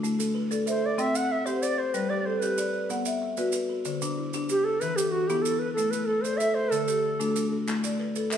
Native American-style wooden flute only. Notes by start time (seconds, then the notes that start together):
0.69 C5
0.86 D5
1.00 E5
1.16 F#5
1.32 E5
1.46 C5
1.62 D5
1.78 C5
1.94 B4
2.09 D5
2.26 C5
2.40 B4
4.50 G4
4.64 A4
4.80 B4
4.96 G4
5.11 F#4
5.27 G4
5.42 A4
5.59 B4
5.73 A4
5.91 B4
6.06 A4
6.21 C5
6.37 E5
6.55 C5
6.71 A4